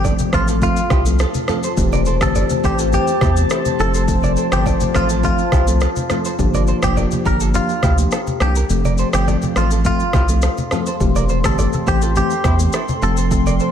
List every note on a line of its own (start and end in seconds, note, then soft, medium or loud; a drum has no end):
0.00 0.13 G1 medium
0.00 0.30 F3 medium
0.00 0.30 A3 medium
0.00 0.30 C4 medium
0.00 1.75 F4 medium
0.00 0.30 A4 medium
0.00 6.35 C5 medium
0.00 6.35 A5 medium
0.04 0.13 A4 medium
0.04 0.13 D5 medium
0.04 kick medium
0.04 low conga medium
0.04 shaker medium
0.19 high conga medium
0.19 shaker medium
0.33 0.68 A1 medium
0.33 0.60 F3 medium
0.33 0.60 A3 medium
0.33 0.60 C4 medium
0.33 0.47 F4 medium
0.33 0.60 A4 medium
0.33 0.42 A4 medium
0.33 0.41 C5 medium
0.33 kick loud
0.33 cross-stick medium
0.33 shaker medium
0.48 0.57 F4 medium
0.48 0.56 A4 medium
0.48 shaker medium
0.62 0.79 F3 medium
0.62 0.79 A3 medium
0.62 0.79 C4 medium
0.62 1.04 F4 medium
0.62 0.79 A4 loud
0.62 kick medium
0.62 low conga medium
0.62 shaker medium
0.77 shaker medium
0.90 1.25 C2 medium
0.90 1.00 E4 medium
0.90 0.99 G4 medium
0.90 kick medium
0.90 cross-stick medium
0.90 high conga medium
0.90 shaker soft
1.06 1.22 F3 medium
1.06 1.22 A3 medium
1.06 1.22 C4 medium
1.06 1.22 A4 medium
1.06 shaker medium
1.19 1.29 F4 medium
1.19 1.28 A4 medium
1.19 cross-stick medium
1.19 shaker medium
1.34 high conga medium
1.34 shaker medium
1.48 1.66 F3 medium
1.48 1.66 A3 medium
1.48 1.66 C4 medium
1.48 1.58 F4 medium
1.48 1.66 A4 medium
1.48 1.57 A4 medium
1.48 cross-stick medium
1.48 low conga medium
1.48 shaker soft
1.63 1.72 A4 medium
1.63 1.71 C5 medium
1.63 shaker medium
1.77 2.22 E1 loud
1.77 2.18 E3 medium
1.77 2.18 A3 medium
1.77 2.18 C4 medium
1.77 3.77 G4 medium
1.77 2.18 G4 medium
1.77 kick loud
1.77 low conga medium
1.77 shaker medium
1.92 2.01 A#4 medium
1.92 2.00 D5 medium
1.92 high conga medium
1.92 shaker soft
2.05 2.15 A4 medium
2.05 2.15 C5 medium
2.05 shaker medium
2.21 2.44 G1 medium
2.21 2.60 E3 medium
2.21 2.61 A3 medium
2.21 2.61 C4 medium
2.21 2.61 G4 medium
2.21 2.34 A4 medium
2.21 kick medium
2.21 cross-stick loud
2.21 high conga soft
2.21 shaker medium
2.35 2.44 A4 medium
2.35 2.44 D5 medium
2.35 low conga medium
2.35 shaker medium
2.50 high conga medium
2.50 shaker medium
2.63 2.98 A1 medium
2.63 2.90 E3 medium
2.63 2.90 A3 medium
2.63 2.91 C4 medium
2.63 2.91 G4 medium
2.63 2.77 G4 medium
2.63 2.73 A4 medium
2.63 2.72 C5 medium
2.63 kick medium
2.63 shaker medium
2.79 2.87 F4 medium
2.79 2.87 A4 medium
2.79 shaker medium
2.92 3.10 E3 medium
2.92 3.10 A3 medium
2.92 3.10 C4 medium
2.92 3.10 G4 loud
2.92 3.35 G4 medium
2.92 low conga medium
2.92 shaker medium
3.07 shaker soft
3.21 3.44 E2 medium
3.21 3.31 E4 medium
3.21 3.30 G4 medium
3.21 kick medium
3.21 cross-stick medium
3.21 high conga medium
3.21 shaker soft
3.36 3.76 E3 medium
3.36 3.76 A3 medium
3.36 3.76 C4 medium
3.36 3.76 G4 medium
3.36 shaker loud
3.50 3.59 E4 medium
3.50 3.59 A4 medium
3.50 cross-stick loud
3.50 shaker medium
3.65 high conga medium
3.65 shaker medium
3.79 4.37 F1 loud
3.79 4.06 F3 medium
3.79 4.06 A3 medium
3.79 4.06 C4 medium
3.79 6.36 F4 medium
3.79 3.88 F4 medium
3.79 4.06 A4 medium
3.79 3.88 A4 medium
3.79 3.93 A4 medium
3.79 low conga medium
3.79 shaker soft
3.94 4.03 A4 medium
3.94 4.02 C5 medium
3.94 shaker medium
4.08 4.48 F3 medium
4.08 4.48 A3 medium
4.08 4.48 C4 medium
4.08 4.49 A4 loud
4.08 kick loud
4.08 low conga medium
4.08 shaker medium
4.23 4.32 A#4 medium
4.23 4.31 D5 medium
4.23 high conga medium
4.23 shaker soft
4.37 4.46 A4 medium
4.37 4.46 C5 medium
4.37 shaker medium
4.52 4.75 G1 medium
4.52 4.91 F3 medium
4.52 4.91 A3 medium
4.52 4.92 C4 medium
4.52 4.64 G4 medium
4.52 4.92 A4 medium
4.52 cross-stick loud
4.52 high conga medium
4.52 shaker medium
4.66 4.75 A4 medium
4.66 4.74 D5 medium
4.66 kick medium
4.66 low conga medium
4.66 shaker medium
4.80 high conga medium
4.80 shaker medium
4.95 5.29 A1 medium
4.95 5.21 F3 medium
4.95 5.21 A3 medium
4.95 5.21 C4 medium
4.95 5.08 F4 medium
4.95 5.22 A4 medium
4.95 5.04 A4 medium
4.95 5.03 C5 medium
4.95 kick medium
4.95 cross-stick medium
4.95 shaker medium
5.09 5.18 F4 medium
5.09 5.18 A4 medium
5.09 shaker loud
5.23 5.41 F3 medium
5.23 5.41 A3 medium
5.23 5.41 C4 medium
5.23 5.65 F4 medium
5.23 5.41 A4 loud
5.23 kick medium
5.23 low conga medium
5.23 shaker medium
5.38 shaker medium
5.52 5.87 C2 medium
5.52 5.62 E4 medium
5.52 5.61 G4 medium
5.52 kick medium
5.52 cross-stick medium
5.52 high conga medium
5.52 shaker soft
5.67 5.84 F3 medium
5.67 5.84 A3 medium
5.67 5.84 C4 medium
5.67 5.84 A4 medium
5.67 shaker loud
5.81 5.90 F4 medium
5.81 5.90 A4 medium
5.81 cross-stick medium
5.81 shaker medium
5.96 high conga medium
5.96 shaker medium
6.10 6.27 F3 medium
6.10 6.27 A3 medium
6.10 6.27 C4 medium
6.10 6.19 F4 medium
6.10 6.28 A4 medium
6.10 6.19 A4 medium
6.10 cross-stick medium
6.10 low conga medium
6.10 shaker soft
6.25 6.34 A4 medium
6.25 6.33 C5 medium
6.25 shaker medium
6.39 6.73 G1 loud
6.39 6.79 F3 medium
6.39 6.79 A#3 medium
6.39 6.79 D4 medium
6.39 8.67 G4 medium
6.39 6.79 G4 loud
6.39 8.67 F5 medium
6.39 8.67 A#5 medium
6.39 kick loud
6.39 low conga medium
6.39 shaker medium
6.54 6.62 A#4 medium
6.54 6.62 D5 medium
6.54 high conga medium
6.54 shaker soft
6.67 6.77 A4 medium
6.67 6.76 C5 medium
6.67 shaker medium
6.82 7.05 F1 medium
6.82 7.22 F3 medium
6.82 7.22 A#3 medium
6.82 7.22 D4 medium
6.82 7.22 G4 medium
6.82 6.95 G4 medium
6.82 kick medium
6.82 cross-stick loud
6.82 high conga soft
6.82 shaker medium
6.97 7.06 A#4 medium
6.97 7.05 D5 medium
6.97 low conga medium
6.97 shaker medium
7.11 high conga medium
7.11 shaker medium
7.25 7.60 G1 medium
7.25 7.52 F3 medium
7.25 7.52 A#3 medium
7.25 7.52 D4 medium
7.25 7.52 G4 medium
7.25 7.35 G4 medium
7.25 7.34 A#4 medium
7.25 7.39 A#4 medium
7.25 kick loud
7.25 shaker medium
7.40 7.49 F4 medium
7.40 7.48 A4 medium
7.40 shaker loud
7.54 7.71 F3 medium
7.54 7.72 A#3 medium
7.54 7.72 D4 medium
7.54 7.96 F4 medium
7.54 7.72 G4 loud
7.54 low conga medium
7.54 shaker medium
7.69 shaker medium
7.83 8.06 D2 medium
7.83 7.92 E4 medium
7.83 7.92 G4 medium
7.83 kick medium
7.83 cross-stick medium
7.83 high conga medium
7.83 shaker soft
7.98 8.14 F3 medium
7.98 8.14 A#3 medium
7.98 8.14 D4 medium
7.98 8.15 G4 medium
7.98 shaker loud
8.11 8.21 F4 medium
8.11 8.20 A4 medium
8.11 cross-stick medium
8.11 shaker medium
8.27 high conga medium
8.27 shaker medium
8.40 8.63 C2 medium
8.40 8.58 F3 medium
8.40 8.58 A#3 medium
8.40 8.58 D4 medium
8.40 8.50 F4 medium
8.40 8.58 G4 medium
8.40 8.54 G4 medium
8.40 8.49 A4 medium
8.40 cross-stick medium
8.40 low conga medium
8.40 shaker soft
8.55 8.64 G4 medium
8.55 8.64 A#4 medium
8.55 shaker medium
8.69 9.04 F1 loud
8.69 9.10 F3 medium
8.69 9.10 A3 medium
8.69 9.10 C4 medium
8.69 13.72 A4 medium
8.69 9.10 A4 medium
8.69 10.98 F5 medium
8.69 13.72 C6 medium
8.69 low conga medium
8.69 shaker medium
8.85 8.93 A#4 medium
8.85 8.92 D5 medium
8.85 high conga medium
8.85 shaker soft
8.98 9.08 A4 medium
8.98 9.07 C5 medium
8.98 shaker medium
9.13 9.36 G1 medium
9.13 9.53 F3 medium
9.13 9.53 A3 medium
9.13 9.53 C4 medium
9.13 9.26 G4 medium
9.13 9.53 A4 medium
9.13 cross-stick loud
9.13 high conga medium
9.13 shaker medium
9.28 9.36 A4 medium
9.28 9.36 D5 medium
9.28 low conga medium
9.28 shaker medium
9.42 high conga medium
9.42 shaker medium
9.56 9.91 A1 medium
9.56 9.83 F3 medium
9.56 9.83 A3 medium
9.56 9.83 C4 medium
9.56 9.70 F4 medium
9.56 9.83 A4 medium
9.56 9.65 A4 medium
9.56 9.65 C5 medium
9.56 cross-stick medium
9.56 shaker medium
9.71 9.80 F4 medium
9.71 9.79 A4 medium
9.71 shaker medium
9.85 10.02 F3 medium
9.85 10.02 A3 medium
9.85 10.02 C4 medium
9.85 10.27 F4 medium
9.85 10.02 A4 loud
9.85 kick medium
9.85 low conga medium
9.85 shaker medium
10.00 shaker medium
10.13 10.48 C2 medium
10.13 10.23 E4 medium
10.13 10.22 G4 medium
10.13 kick medium
10.13 cross-stick medium
10.13 high conga medium
10.13 shaker soft
10.29 10.45 F3 medium
10.29 10.45 A3 medium
10.29 10.45 C4 medium
10.29 10.45 A4 medium
10.29 shaker loud
10.42 10.52 F4 medium
10.42 10.51 A4 medium
10.42 cross-stick loud
10.42 shaker medium
10.57 high conga medium
10.57 shaker soft
10.71 10.89 F3 medium
10.71 10.89 A3 medium
10.71 10.89 C4 medium
10.71 10.81 F4 medium
10.71 10.89 A4 medium
10.71 10.80 A4 medium
10.71 cross-stick medium
10.71 low conga medium
10.71 shaker soft
10.86 10.95 A4 medium
10.86 10.94 C5 medium
10.86 shaker medium
11.00 11.45 E1 loud
11.00 11.41 E3 medium
11.00 11.41 A3 medium
11.00 11.41 C4 medium
11.00 11.41 G4 medium
11.00 13.00 G5 medium
11.00 kick loud
11.00 low conga medium
11.00 shaker medium
11.15 11.24 A#4 medium
11.15 11.23 D5 medium
11.15 high conga medium
11.15 shaker soft
11.29 11.38 A4 medium
11.29 11.38 C5 medium
11.29 shaker medium
11.44 11.67 G1 medium
11.44 11.84 E3 medium
11.44 11.84 A3 medium
11.44 11.84 C4 medium
11.44 11.84 G4 medium
11.44 11.57 A4 medium
11.44 kick medium
11.44 cross-stick loud
11.44 high conga medium
11.44 shaker medium
11.58 11.67 A4 medium
11.58 11.67 D5 medium
11.58 low conga medium
11.58 shaker medium
11.73 high conga medium
11.73 shaker medium
11.87 12.22 A1 medium
11.87 12.13 E3 medium
11.87 12.14 A3 medium
11.87 12.14 C4 medium
11.87 12.14 G4 medium
11.87 12.00 G4 medium
11.87 11.96 A4 medium
11.87 11.95 C5 medium
11.87 kick loud
11.87 shaker medium
12.02 12.10 F4 medium
12.02 12.10 A4 medium
12.02 shaker medium
12.16 12.33 E3 medium
12.16 12.33 A3 medium
12.16 12.33 C4 medium
12.16 12.33 G4 loud
12.16 12.58 G4 medium
12.16 low conga medium
12.16 shaker medium
12.30 shaker medium
12.44 12.67 E2 medium
12.44 12.54 E4 medium
12.44 12.53 G4 medium
12.44 kick medium
12.44 cross-stick medium
12.44 high conga medium
12.44 shaker soft
12.59 12.76 E3 medium
12.59 12.76 A3 medium
12.59 12.76 C4 medium
12.59 12.76 G4 medium
12.59 shaker loud
12.73 12.83 E4 medium
12.73 12.82 A4 medium
12.73 cross-stick medium
12.73 shaker medium
12.88 high conga medium
12.88 shaker medium
13.02 13.60 F1 loud
13.02 13.29 F3 medium
13.02 13.29 A3 medium
13.02 13.29 C4 medium
13.02 13.11 F4 medium
13.02 13.29 A4 loud
13.02 13.11 A4 medium
13.02 13.16 A4 medium
13.02 13.72 F5 medium
13.02 low conga medium
13.02 shaker soft
13.17 13.26 A4 medium
13.17 13.25 C5 medium
13.17 shaker medium
13.31 13.71 F3 medium
13.31 13.71 A3 medium
13.31 13.72 C4 medium
13.31 13.72 A4 loud
13.31 kick loud
13.31 low conga medium
13.31 shaker medium
13.46 13.55 A#4 medium
13.46 13.54 D5 medium
13.46 high conga medium
13.46 shaker medium
13.60 13.69 A4 medium
13.60 13.69 C5 medium
13.60 shaker medium